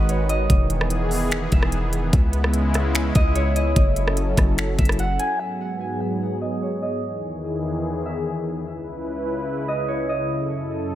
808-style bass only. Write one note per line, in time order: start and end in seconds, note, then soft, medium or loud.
0.00 0.48 G#1 loud
0.50 1.48 E1 loud
1.52 2.11 E1 loud
2.13 3.11 C#2 loud
3.15 3.74 C#2 loud
3.76 4.35 F#1 loud
4.37 4.77 F#1 loud
4.79 5.18 F#1 loud